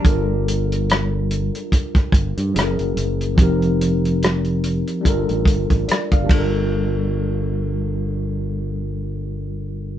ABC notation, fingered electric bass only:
X:1
M:4/4
L:1/16
Q:"Swing 16ths" 1/4=72
K:Gm
V:1 name="Fingered electric bass" clef=bass
G,,,6- G,,, z3 G,,, G,, ^F,,, F,,, F,,,2 | F,,,6- F,,, z G,,, A,,, G,,, A,,, z G,,, G,,,2- | G,,,16 |]